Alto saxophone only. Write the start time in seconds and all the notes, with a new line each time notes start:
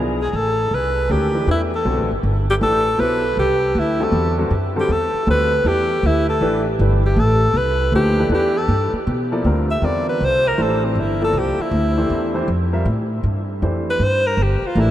0.22 G#4
0.31 G#4
0.36 A4
0.74 B4
1.11 G4
1.51 E4
1.75 A4
2.50 G4
2.63 A4
3.00 B4
3.39 G4
3.79 E4
4.04 A4
4.80 G4
4.92 A4
5.30 B4
5.67 G4
6.06 E4
6.29 A4
7.06 G4
7.19 A4
7.57 B4
7.96 G4
8.34 G4
8.58 A4
9.71 E5
9.85 D5
10.09 B4
10.25 C5
10.48 A#4
10.62 A4
10.85 C4
11.00 E4
11.24 A4
11.38 G4
11.62 E4
13.90 B4
14.04 C5
14.27 A#4
14.43 G4
14.67 F4
14.80 E4